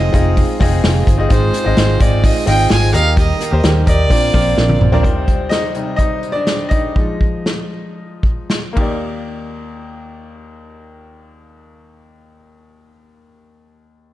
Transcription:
Already playing: steel-string acoustic guitar F3 G#3 D#4 F4 C5, upright piano C4 D#4 F4 G#4 D#5, fiddle D#5
0.13 fingered electric bass F1, upright piano C4 D#4 F4 G#4 D#5, steel-string acoustic guitar D#4 F4 C5, kick, hi-hat pedal, open hi-hat
0.36 steel-string acoustic guitar G#3 D#4 F4 C5, kick, hi-hat pedal, open hi-hat
0.60 fingered electric bass F1, upright piano C4 D#4 F4 G#4 D#5, steel-string acoustic guitar D#4 F4 C5, kick, hi-hat pedal, open hi-hat
0.84 fingered electric bass F1, steel-string acoustic guitar F3 G#3 D#4 F4 C5, snare, hi-hat pedal, open hi-hat
1.07 fingered electric bass G1, steel-string acoustic guitar D#4 F4 C5, kick, hi-hat pedal, open hi-hat
1.18 upright piano C4 D#4 F4 G#4 D#5
1.29 fingered electric bass G#1, upright piano G#2 C4 D#4 F4 G#4 D#5, steel-string acoustic guitar G#3 D#4 F4 C5, fiddle C5, kick, hi-hat pedal, open hi-hat
1.54 steel-string acoustic guitar D#4 F4 C5, hi-hat pedal, open hi-hat
1.64 fingered electric bass G#1, upright piano C4 D#4 F4 G#4 D#5
1.77 fingered electric bass G#1, steel-string acoustic guitar G#3 D#4 F4 C5, snare, hi-hat pedal, open hi-hat
2.00 fingered electric bass G#1, upright piano C4 D#4 F4 G#4 D#5, steel-string acoustic guitar D#4 F4 C5, fiddle D5, kick, hi-hat pedal, open hi-hat
2.23 steel-string acoustic guitar G#3 D#4 F4 C5, fiddle D#5, kick, hi-hat pedal, open hi-hat
2.46 fingered electric bass G#1, upright piano C4 D#4 F4 G#4 D#5, steel-string acoustic guitar D#4 F4 C5, fiddle G5, hi-hat pedal, open hi-hat
2.70 fingered electric bass G#1, steel-string acoustic guitar G#3 D#4 F4 C5, fiddle G#5, snare, hi-hat pedal, open hi-hat
2.93 fingered electric bass D#2, upright piano D#3 G4 A#4 D#5, steel-string acoustic guitar A#3 G4 A#4, fiddle F5, hi-hat pedal, open hi-hat
3.17 steel-string acoustic guitar D#3 G3 A#3 G4 A#4, fiddle D#5, kick, hi-hat pedal, open hi-hat
3.40 steel-string acoustic guitar A#3 G4 A#4, hi-hat pedal, open hi-hat
3.51 fingered electric bass D#2, upright piano G4 A#4 C5
3.63 fingered electric bass D#2, steel-string acoustic guitar D#3 G3 A#3 G4 A#4, snare, hi-hat pedal, open hi-hat
3.86 fingered electric bass D#2, steel-string acoustic guitar A#3 G4 A#4, upright piano G4 A#4 D#5, fiddle D5, kick, hi-hat pedal, open hi-hat
4.09 fingered electric bass A#1, upright piano A#2 C4 D4 F4 A#4 D5, steel-string acoustic guitar F3 C4 D4 A#4, kick, hi-hat pedal, open hi-hat
4.33 fingered electric bass A#1, steel-string acoustic guitar F3 C4 D4 A#4, upright piano C4 D4 F4 A#4 D5, kick, hi-hat pedal, open hi-hat
4.57 fingered electric bass A#1, steel-string acoustic guitar A#2 D3 F3 C4 D4 A#4, snare
4.69 high tom
4.80 fingered electric bass A#1, steel-string acoustic guitar F3 C4 D4 A#4, mid tom
4.92 upright piano C4 D4 F4 A#4 D5, floor tom
5.03 upright piano C3 G3 C4 D#4 C5, kick, closed hi-hat
5.28 kick, closed hi-hat
5.49 upright piano D#4 D#5, snare, closed hi-hat
5.75 upright piano C3 G3 D#4, closed hi-hat
5.96 upright piano D#4 D#5, kick, closed hi-hat
6.23 closed hi-hat
6.32 upright piano D4 D5
6.47 snare, closed hi-hat
6.69 upright piano D#4 D#5, kick, closed hi-hat
6.96 upright piano F3 G#3 D#4, kick
7.21 kick
7.46 snare
8.23 kick
8.50 snare
8.73 upright piano A#3 D#4, kick
8.77 upright piano D#2 G4 D5, ride

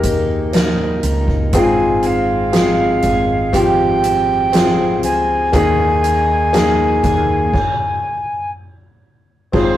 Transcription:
Already playing: fretless electric bass D#2, steel-string acoustic guitar D#3 A#3 G#4, grand piano A#3 D#4 G4 G#4, recorder A#4
0.03 steel-string acoustic guitar D#4, kick, closed hi-hat
0.53 grand piano A#3 D#4 A#4, steel-string acoustic guitar G#4, snare, closed hi-hat
1.03 fretless electric bass C#2, steel-string acoustic guitar D#4, closed hi-hat
1.28 kick
1.53 fretless electric bass G#1, steel-string acoustic guitar G#2, grand piano G#2 C4 F4 G#4, recorder G#5, kick, closed hi-hat
2.03 steel-string acoustic guitar C4, recorder F5, closed hi-hat
2.52 steel-string acoustic guitar G#3, grand piano C4 F4 G#4, snare, closed hi-hat
3.02 fretless electric bass G#1, steel-string acoustic guitar G#4, kick, closed hi-hat
3.53 steel-string acoustic guitar F3, grand piano C4 F4 G4, recorder G5, kick, closed hi-hat
4.03 steel-string acoustic guitar C4, closed hi-hat
4.52 grand piano C4 F4 G#4, steel-string acoustic guitar G#4, snare, closed hi-hat
5.03 fretless electric bass C#2, steel-string acoustic guitar C4, recorder G#5, closed hi-hat
5.52 fretless electric bass D#2, steel-string acoustic guitar D#3, grand piano D#3 A#3 D#4 G#4, kick, closed hi-hat
6.04 steel-string acoustic guitar D#4, closed hi-hat
6.53 grand piano A#3 D#4 G#4, steel-string acoustic guitar A#3, snare, closed hi-hat
7.03 fretless electric bass D#2, steel-string acoustic guitar G#4, kick, closed hi-hat
7.54 kick, crash
9.52 fretless electric bass G#1, grand piano G#2 C4 F4 G#4, steel-string acoustic guitar G#2, recorder C#5, kick, crash
9.58 recorder C5

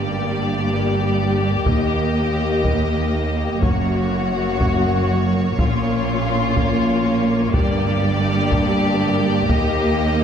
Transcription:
Already playing: double bass section G1, cello section G2, viola section A#3, french horn section A#3 G4, violin section G4 D5
1.65 double bass section D#2, cello section D#2, viola section A#3, violin section D#5, taiko
2.64 taiko
3.60 double bass section F#1, cello section F#2, french horn section A#3 F#4, violin section F#4 C#5, taiko
4.61 taiko
5.58 double bass section A#1, cello section A#2, viola section A#3, french horn section C#4, violin section F4, taiko
6.57 taiko
7.54 double bass section G1, cello section G2, french horn section A#3 D4, violin section G4 D5, taiko
8.52 taiko
9.49 double bass section D#2, cello section D#2, viola section A#3, french horn section G4, violin section D#5, taiko

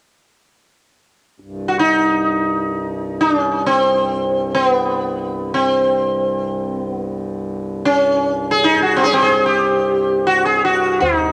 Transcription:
1.40 harmonium C2 G2
1.68 sitar F#4
1.79 sitar D#4
3.20 sitar D4
3.38 sitar C#4
3.66 sitar C4
4.54 sitar C4
4.69 sitar B3
5.54 sitar C4
6.84 sitar B3
7.85 sitar C#4
8.51 sitar G#4
8.64 sitar D#4
8.82 sitar F#4
8.96 sitar C4
9.04 sitar C#4 G#4
9.13 sitar C4 G4
9.22 sitar G#4
9.46 sitar G4
10.27 sitar F#4
10.46 sitar G#4
10.65 sitar F#4
11.01 harmonium C2 G2, sitar D#4, tabla tin, tabla ge

